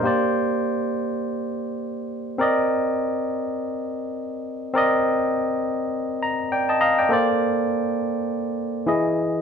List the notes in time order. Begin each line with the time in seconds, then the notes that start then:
0.03 A#3 G4 C5
0.07 D5
2.38 C4 A#4 D5
2.42 D#5
4.73 C4 A#4 D5
4.78 D#5
6.23 A#5
6.52 D5 G5
6.69 D#5 A5
6.81 D#5 F5 A#5
6.99 D5 G5
7.09 A#3 A4 C5
7.13 D5
8.86 E3 E4 G#4 D#5